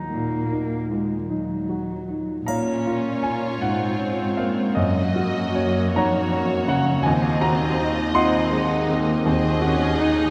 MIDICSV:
0, 0, Header, 1, 8, 480
1, 0, Start_track
1, 0, Key_signature, -5, "minor"
1, 0, Tempo, 783290
1, 1522, Tempo, 767263
1, 1523, Time_signature, 12, 3, 24, 8
1, 3922, Tempo, 729040
1, 6544, End_track
2, 0, Start_track
2, 0, Title_t, "Violin section"
2, 0, Program_c, 0, 48
2, 1518, Note_on_c, 0, 73, 41
2, 2921, Note_off_c, 0, 73, 0
2, 2950, Note_on_c, 0, 75, 46
2, 3678, Note_on_c, 0, 73, 49
2, 3689, Note_off_c, 0, 75, 0
2, 4385, Note_off_c, 0, 73, 0
2, 4400, Note_on_c, 0, 75, 51
2, 5845, Note_off_c, 0, 75, 0
2, 5853, Note_on_c, 0, 75, 58
2, 6544, Note_off_c, 0, 75, 0
2, 6544, End_track
3, 0, Start_track
3, 0, Title_t, "Violin section"
3, 0, Program_c, 1, 48
3, 1517, Note_on_c, 1, 65, 46
3, 2921, Note_off_c, 1, 65, 0
3, 2952, Note_on_c, 1, 66, 46
3, 3690, Note_off_c, 1, 66, 0
3, 3697, Note_on_c, 1, 66, 50
3, 4396, Note_off_c, 1, 66, 0
3, 4412, Note_on_c, 1, 65, 50
3, 5120, Note_on_c, 1, 63, 62
3, 5130, Note_off_c, 1, 65, 0
3, 5847, Note_on_c, 1, 68, 59
3, 5849, Note_off_c, 1, 63, 0
3, 6544, Note_off_c, 1, 68, 0
3, 6544, End_track
4, 0, Start_track
4, 0, Title_t, "Grand piano"
4, 0, Program_c, 2, 0
4, 0, Control_c, 2, 64, 127
4, 0, Note_on_c, 2, 63, 23
4, 0, Note_on_c, 2, 65, 21
4, 0, Note_on_c, 2, 66, 29
4, 90, Note_on_c, 2, 46, 27
4, 223, Note_off_c, 2, 63, 0
4, 320, Note_on_c, 2, 63, 26
4, 471, Note_off_c, 2, 46, 0
4, 562, Note_off_c, 2, 65, 0
4, 562, Note_on_c, 2, 65, 24
4, 705, Note_off_c, 2, 63, 0
4, 796, Note_on_c, 2, 63, 30
4, 800, Note_off_c, 2, 65, 0
4, 1036, Note_off_c, 2, 66, 0
4, 1036, Note_on_c, 2, 66, 25
4, 1181, Note_off_c, 2, 63, 0
4, 1285, Note_on_c, 2, 63, 26
4, 1427, Note_off_c, 2, 66, 0
4, 1510, Note_on_c, 2, 82, 50
4, 1518, Note_on_c, 2, 77, 39
4, 1520, Note_on_c, 2, 46, 41
4, 1524, Note_on_c, 2, 73, 36
4, 1525, Note_off_c, 2, 63, 0
4, 1535, Control_c, 2, 64, 0
4, 1659, Control_c, 2, 64, 127
4, 1764, Note_on_c, 2, 65, 37
4, 1964, Note_off_c, 2, 82, 0
4, 1968, Note_off_c, 2, 77, 0
4, 1971, Note_off_c, 2, 73, 0
4, 1989, Note_on_c, 2, 80, 54
4, 2006, Note_on_c, 2, 61, 35
4, 2139, Note_off_c, 2, 65, 0
4, 2210, Note_off_c, 2, 46, 0
4, 2213, Note_off_c, 2, 80, 0
4, 2229, Note_on_c, 2, 78, 58
4, 2235, Note_on_c, 2, 63, 29
4, 2382, Note_off_c, 2, 61, 0
4, 2465, Note_on_c, 2, 61, 35
4, 2473, Note_off_c, 2, 63, 0
4, 2683, Note_off_c, 2, 78, 0
4, 2704, Note_on_c, 2, 77, 48
4, 2711, Note_on_c, 2, 58, 32
4, 2849, Note_off_c, 2, 61, 0
4, 2929, Note_off_c, 2, 77, 0
4, 2939, Note_on_c, 2, 75, 57
4, 2949, Note_off_c, 2, 58, 0
4, 2949, Note_on_c, 2, 42, 59
4, 2959, Control_c, 2, 64, 0
4, 3082, Control_c, 2, 64, 127
4, 3195, Note_on_c, 2, 66, 38
4, 3413, Note_off_c, 2, 75, 0
4, 3437, Note_on_c, 2, 61, 41
4, 3439, Note_on_c, 2, 73, 54
4, 3593, Note_off_c, 2, 66, 0
4, 3667, Note_off_c, 2, 42, 0
4, 3669, Note_off_c, 2, 73, 0
4, 3697, Note_on_c, 2, 63, 43
4, 3698, Note_on_c, 2, 82, 67
4, 3703, Note_on_c, 2, 78, 46
4, 3704, Note_on_c, 2, 73, 49
4, 3828, Note_off_c, 2, 61, 0
4, 3916, Note_on_c, 2, 61, 45
4, 3928, Note_off_c, 2, 63, 0
4, 4144, Note_off_c, 2, 82, 0
4, 4147, Note_off_c, 2, 73, 0
4, 4147, Note_off_c, 2, 78, 0
4, 4155, Note_on_c, 2, 49, 50
4, 4164, Note_on_c, 2, 78, 73
4, 4305, Note_off_c, 2, 61, 0
4, 4388, Note_off_c, 2, 78, 0
4, 4389, Note_on_c, 2, 80, 64
4, 4400, Note_off_c, 2, 49, 0
4, 4409, Note_on_c, 2, 39, 61
4, 4417, Control_c, 2, 64, 0
4, 4522, Control_c, 2, 64, 127
4, 4620, Note_off_c, 2, 80, 0
4, 4642, Note_on_c, 2, 82, 71
4, 4644, Note_on_c, 2, 66, 48
4, 4886, Note_on_c, 2, 63, 46
4, 5029, Note_off_c, 2, 66, 0
4, 5098, Note_off_c, 2, 82, 0
4, 5125, Note_on_c, 2, 84, 75
4, 5126, Note_on_c, 2, 78, 58
4, 5129, Note_on_c, 2, 65, 38
4, 5130, Note_on_c, 2, 75, 59
4, 5271, Note_off_c, 2, 63, 0
4, 5369, Note_off_c, 2, 65, 0
4, 5370, Note_on_c, 2, 63, 50
4, 5613, Note_on_c, 2, 60, 44
4, 5756, Note_off_c, 2, 63, 0
4, 5828, Note_off_c, 2, 39, 0
4, 5856, Note_on_c, 2, 39, 57
4, 5998, Note_off_c, 2, 60, 0
4, 6091, Note_on_c, 2, 66, 54
4, 6338, Note_on_c, 2, 63, 54
4, 6469, Note_off_c, 2, 66, 0
4, 6544, Note_off_c, 2, 39, 0
4, 6544, Note_off_c, 2, 63, 0
4, 6544, Note_off_c, 2, 75, 0
4, 6544, Note_off_c, 2, 78, 0
4, 6544, Note_off_c, 2, 84, 0
4, 6544, End_track
5, 0, Start_track
5, 0, Title_t, "Clarinet"
5, 0, Program_c, 3, 71
5, 0, Note_on_c, 3, 63, 48
5, 1247, Note_off_c, 3, 63, 0
5, 6544, End_track
6, 0, Start_track
6, 0, Title_t, "Viola section"
6, 0, Program_c, 4, 48
6, 1526, Note_on_c, 4, 61, 35
6, 2209, Note_off_c, 4, 61, 0
6, 2227, Note_on_c, 4, 60, 42
6, 2946, Note_off_c, 4, 60, 0
6, 2956, Note_on_c, 4, 58, 49
6, 4409, Note_off_c, 4, 58, 0
6, 4409, Note_on_c, 4, 60, 50
6, 5114, Note_off_c, 4, 60, 0
6, 5136, Note_on_c, 4, 60, 53
6, 5368, Note_off_c, 4, 60, 0
6, 5379, Note_on_c, 4, 56, 56
6, 5616, Note_off_c, 4, 56, 0
6, 5618, Note_on_c, 4, 58, 62
6, 5856, Note_off_c, 4, 58, 0
6, 5871, Note_on_c, 4, 60, 56
6, 6101, Note_off_c, 4, 60, 0
6, 6111, Note_on_c, 4, 61, 63
6, 6337, Note_off_c, 4, 61, 0
6, 6341, Note_on_c, 4, 63, 62
6, 6544, Note_off_c, 4, 63, 0
6, 6544, End_track
7, 0, Start_track
7, 0, Title_t, "Cello section"
7, 0, Program_c, 5, 48
7, 77, Note_on_c, 5, 58, 38
7, 551, Note_off_c, 5, 58, 0
7, 559, Note_on_c, 5, 56, 28
7, 789, Note_on_c, 5, 54, 31
7, 794, Note_off_c, 5, 56, 0
7, 1517, Note_off_c, 5, 54, 0
7, 1523, Note_on_c, 5, 46, 42
7, 2207, Note_off_c, 5, 46, 0
7, 2233, Note_on_c, 5, 44, 47
7, 2934, Note_off_c, 5, 44, 0
7, 2946, Note_on_c, 5, 42, 47
7, 3687, Note_off_c, 5, 42, 0
7, 3688, Note_on_c, 5, 41, 48
7, 4405, Note_off_c, 5, 41, 0
7, 4412, Note_on_c, 5, 39, 49
7, 6540, Note_off_c, 5, 39, 0
7, 6544, End_track
8, 0, Start_track
8, 0, Title_t, "Drums"
8, 1520, Note_on_c, 9, 81, 27
8, 1582, Note_off_c, 9, 81, 0
8, 6544, End_track
0, 0, End_of_file